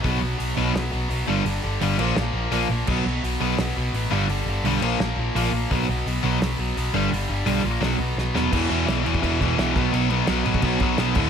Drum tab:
CC |----------------|------x---------|x---------------|------x---------|
HH |o---o---o---o---|o---o-------o---|----o---o---o---|o---o-------o---|
SD |--------o-------|--------o-------|--------o-------|--------o-------|
BD |o---------------|----------------|o---------------|----------------|

CC |----------------|----------------|x-x-x-x-x-x-x-x-|x-x-x-x-x-x-x-x-|
HH |o---o---o---o---|o---o---o-------|----------------|----------------|
SD |--------o-------|--------o---o-o-|----o-------o---|----o-------o---|
BD |o---------------|----------------|o------oo-o---o-|-------oo-o---o-|